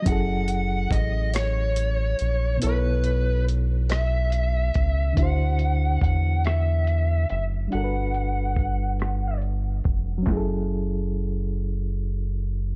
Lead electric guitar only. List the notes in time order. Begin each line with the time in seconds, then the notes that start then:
Already playing: D#5
0.08 F#5
0.92 D#5
1.35 C#5
2.63 B4
3.91 E5
5.18 F#5
6.03 F#5
6.46 E5
7.30 E5
7.73 F#5